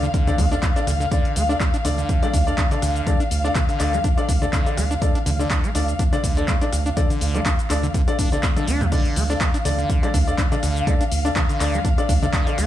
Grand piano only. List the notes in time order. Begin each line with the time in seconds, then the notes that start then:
0.27 D4 A4 D5
0.52 D4 A4 D5
0.76 D4 A4 D5
1.12 D4 A4 D5
1.49 D4 A4 D5
1.85 D4 A4 D5
2.23 D4 A4 D5
2.47 D4 A4 D5
2.71 D4 A4 D5
3.07 D4 A4 D5
3.44 D4 A4 D5
3.80 D4 A4 D5
4.17 D4 A4 D5
4.42 D4 A4 D5
4.66 D4 A4 D5
5.02 D4 A4 D5
5.40 D4 A4 D5
5.75 D4 A4 D5
6.13 D4 A4 D5
6.37 D4 A4 D5
6.61 D4 A4 D5
6.97 D4 A4 D5
7.35 D4 A4 D5
7.70 D4 A4 D5
8.08 D4 A4 D5
8.32 D4 A4 D5
8.57 D4 A4 D5
8.92 D4 A4 D5
9.30 D4 A4 D5
9.65 D4 A4 D5
10.03 D4 A4 D5
10.27 D4 A4 D5
10.52 D4 A4 D5
10.87 D4 A4 D5
11.25 D4 A4 D5
11.60 D4 A4 D5
11.98 D4 A4 D5
12.22 D4 A4 D5
12.47 D4 A4 D5